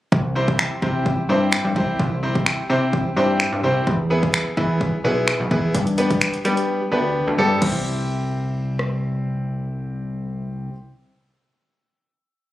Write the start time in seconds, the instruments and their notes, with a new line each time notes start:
0.12 analog synth bass C2, kick
0.35 grand piano C4 E4 G4 C5
0.48 kick
0.59 finger snap
0.82 analog synth bass C3, grand piano C4 E4 G4 C5, kick
1.06 kick
1.29 analog synth bass G2, grand piano C4 E4 G4 C5
1.53 finger snap
1.65 analog synth bass G2
1.76 analog synth bass C2, grand piano C4 E4 G4 C5, kick
1.99 analog synth bass C2, kick
2.23 grand piano C4 E4 G4 C5
2.35 kick
2.46 finger snap
2.69 analog synth bass C3, grand piano C4 E4 G4 C5
2.93 kick
3.16 analog synth bass G2, grand piano C4 E4 G4 C5
3.40 finger snap
3.53 analog synth bass G2
3.63 analog synth bass C2, grand piano C4 E4 G4 C5
3.87 analog synth bass E2, kick
4.10 grand piano B3 E4 G#4 B4
4.23 kick
4.34 finger snap
4.57 analog synth bass E3, grand piano B3 E4 G#4 B4, kick
4.81 kick
5.04 analog synth bass B1, grand piano B3 E4 G#4 B4
5.28 finger snap
5.40 analog synth bass B1
5.51 analog synth bass E2, grand piano B3 E4 G#4 B4, kick
5.75 analog synth bass G2, kick, closed hi-hat
5.87 closed hi-hat
5.98 grand piano B3 D4 G4 B4, closed hi-hat
6.10 kick, closed hi-hat
6.21 finger snap, closed hi-hat
6.34 closed hi-hat
6.45 analog synth bass G3, grand piano B3 D4 G4 B4, closed hi-hat
6.57 closed hi-hat
6.92 analog synth bass D2, grand piano B3 D4 G4 B4
7.27 analog synth bass D2
7.38 analog synth bass G2, grand piano B3 D4 G4 A4
7.60 analog synth bass C2, grand piano C4 E4 G4 C5, kick, crash
8.79 cross-stick